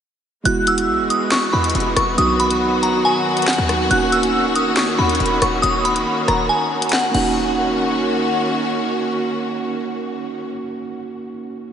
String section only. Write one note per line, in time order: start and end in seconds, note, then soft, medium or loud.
0.45 2.16 E3 medium
0.45 2.16 G#3 medium
0.45 3.87 B3 medium
0.45 7.11 F#4 medium
2.18 3.89 D#3 medium
2.18 3.89 F#3 medium
3.91 7.11 D#3 medium
3.91 7.11 A#3 medium
3.91 7.11 C#4 medium
7.14 10.49 D#3 medium
7.14 10.49 A#3 medium
7.14 10.49 C#4 medium
7.14 10.49 F#4 medium